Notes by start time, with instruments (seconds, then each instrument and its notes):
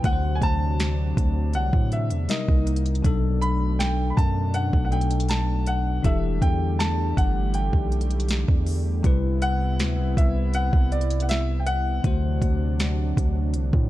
0.03 808-style bass D2, analog synth pad C3 F#3 D4, tine electric piano D3 A3 F#4 B4, grand piano F#5, kick, closed hi-hat
0.13 tine electric piano C5
0.35 grand piano G#5
0.42 808-style bass D2, grand piano A5, kick, closed hi-hat
0.80 snare, closed hi-hat
1.17 808-style bass D2, kick, closed hi-hat
1.53 808-style bass C2, grand piano F#5, closed hi-hat
1.73 808-style bass A2, kick
1.92 grand piano E5, closed hi-hat
2.10 808-style bass E2, closed hi-hat
2.28 tine electric piano C3 G3 D#4 A#4, analog synth pad A#3 D#4, grand piano D#5, snare, closed hi-hat
2.48 808-style bass C2, kick
2.67 closed hi-hat, open hi-hat
2.76 closed hi-hat
2.86 closed hi-hat
2.95 closed hi-hat
3.02 808-style bass B1, tine electric piano B2 F#3 D4 A4, analog synth pad B2 A3 D4, kick, closed hi-hat
3.41 grand piano B5, closed hi-hat
3.79 grand piano G5, snare, closed hi-hat
4.10 grand piano B5
4.17 808-style bass F#2, grand piano A5, kick, closed hi-hat
4.54 grand piano F#5, closed hi-hat
4.73 808-style bass B1, kick
4.85 grand piano F#5
4.91 tine electric piano B2 F#3 D4 A4, grand piano G5, closed hi-hat
5.01 closed hi-hat
5.11 closed hi-hat
5.20 closed hi-hat
5.29 grand piano A5, snare, closed hi-hat
5.67 grand piano F#5, closed hi-hat
6.02 808-style bass E1, analog synth pad D3 G3 A3 G4, tine electric piano E3 D4 E4 G4 A4, grand piano E5, kick, closed hi-hat
6.42 808-style bass E2, grand piano G5, kick, closed hi-hat
6.79 grand piano A5, snare, closed hi-hat
7.17 808-style bass G1, grand piano F#5, kick, closed hi-hat
7.54 grand piano G5, closed hi-hat
7.73 808-style bass B1, kick
7.92 closed hi-hat
8.01 closed hi-hat
8.11 closed hi-hat
8.20 closed hi-hat
8.29 snare, closed hi-hat
8.48 808-style bass E2, kick
8.67 open hi-hat
9.03 808-style bass C2, tine electric piano C3 G3 E4 B4, analog synth pad C3 B3 E4, kick, closed hi-hat
9.42 grand piano F#5, closed hi-hat
9.79 808-style bass D2, snare, closed hi-hat
9.98 808-style bass C2
10.17 808-style bass C2, grand piano E5, kick, closed hi-hat
10.54 grand piano F#5, closed hi-hat
10.73 808-style bass C2, kick
10.92 grand piano D5, closed hi-hat
11.01 closed hi-hat
11.10 closed hi-hat
11.20 grand piano F#5, closed hi-hat
11.29 grand piano E5, snare, closed hi-hat
11.60 grand piano G5
11.67 grand piano F#5, closed hi-hat
12.03 808-style bass D2, analog synth pad C3 F#3 D4, tine electric piano D3 A3 F#4 C5, kick, closed hi-hat
12.42 808-style bass D2, kick, closed hi-hat
12.80 snare, closed hi-hat
13.17 808-style bass D2, kick, closed hi-hat
13.54 808-style bass C2, closed hi-hat
13.73 808-style bass A2, kick